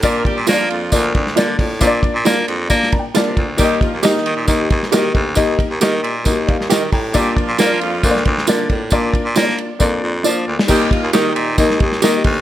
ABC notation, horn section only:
X:1
M:4/4
L:1/8
Q:1/4=135
K:Eb
V:1 name="Horn section"
[B,B] [G,G] [F,F]3 z3 | z8 | [G,G] [F,F] [E,E]3 z3 | z8 |
[G,G] [F,F] [F,F]3 z3 | z8 | [G,G] [F,F] [E,E]3 z3 |]